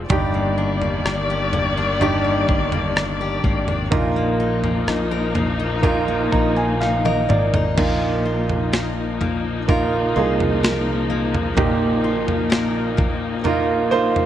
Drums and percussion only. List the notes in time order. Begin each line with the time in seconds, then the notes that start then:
0.10 kick, floor tom
0.82 floor tom
1.06 cross-stick
1.53 floor tom
2.01 floor tom
2.49 kick
2.72 floor tom
2.97 cross-stick
3.44 kick
3.68 floor tom
3.92 kick, floor tom
4.64 floor tom
4.88 cross-stick
5.35 floor tom
5.83 kick, floor tom
6.33 kick
6.82 snare
7.06 high tom
7.30 mid tom
7.54 floor tom
7.78 kick, floor tom, crash
8.49 floor tom
8.73 snare
9.21 floor tom
9.69 kick, floor tom
10.40 floor tom
10.64 snare
11.35 floor tom
11.57 kick, floor tom
12.28 floor tom
12.52 snare
12.98 kick, floor tom
13.45 floor tom
14.16 floor tom